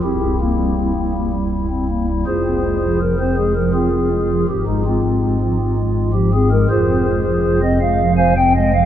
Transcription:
0.02 C1 C2 C4 E4 G4
0.22 C4
0.40 A#3 C4 E4
0.58 G3
0.95 C4
1.13 A#3
1.32 G3
1.69 C4
1.88 A#3
2.07 G3
2.26 F1 F2 F4 G#4 C5
2.44 C4
2.63 G#3
2.82 F3
3.00 A#4
3.19 C4 C5
3.37 G#3 G#4
3.55 F3 A#4
3.73 C4 F4 G#4
3.92 C4
4.11 G#3
4.30 F3
4.48 G#1 G#2 G4
4.67 G#3 D#4
4.85 G#3 C4 F4
5.04 G#3
5.41 F3
5.59 C4
5.77 G#3
6.13 F3 G4
6.33 C4 G#4
6.51 G#3 A#4
6.69 F1 F2 F4 G#4 C5
6.88 C4
7.07 G#3
7.25 F3
7.62 C4 D#5
7.81 G#3 F5
8.00 F3
8.17 C5 F5 G#5
8.37 C4 G5
8.56 G#3 D#5
8.74 F3 F5

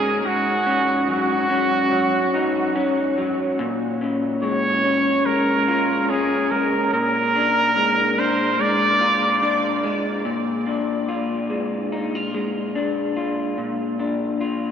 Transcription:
Already playing: G#2 D#3 C#4 F#4 G#4
0.20 G#4
0.24 G#2 F#4
0.66 C#4
1.08 F#3 F#4
1.50 C#4
1.92 F#3
2.34 D#4
2.76 C#4
3.18 F#3
3.59 A#2
4.01 C#4
4.42 G#3 C#5
4.84 C#4
5.26 G#3 A#4
5.68 F4
6.10 C#4 G#4
6.51 G#3 A#4
6.93 A#2 A#4
7.35 D4
7.76 G#3
8.18 D4 C5
8.59 G#3 D5
9.01 F4
9.42 D4
9.84 G#3
10.25 A#2
10.67 D4
11.09 F4
11.50 G#3
11.92 D#4
12.15 F4
12.34 G#3
12.75 D4
13.17 F4
13.58 A#2
13.99 D4
14.41 F4

